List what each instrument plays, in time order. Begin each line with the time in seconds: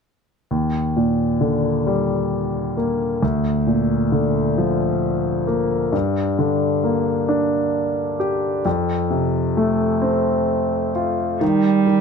0.51 grand piano D#2
0.97 grand piano A#2
1.41 grand piano D3
1.87 grand piano G3
2.77 grand piano A#3
3.23 grand piano D2
3.67 grand piano A#2
4.12 grand piano D3
4.58 grand piano F3
5.47 grand piano A#3
5.93 grand piano G2
6.39 grand piano D3
6.84 grand piano A#3
7.29 grand piano D4
8.20 grand piano G4
8.65 grand piano F2
9.11 grand piano C3
9.57 grand piano A3
10.02 grand piano C4
10.95 grand piano F4
11.41 grand piano D#3, cello G3
11.87 grand piano D#3